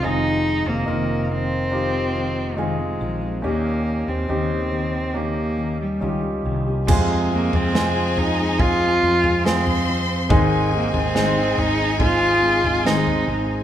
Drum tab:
CC |----------------|----------------|x---------------|----------------|
SD |----------------|----------------|----o-------o---|----o-------o---|
FT |----------------|----------------|o--o--o-o--o-o--|o--o--o-o--o-o--|
BD |----------------|----------------|o-------o-------|o-------o-------|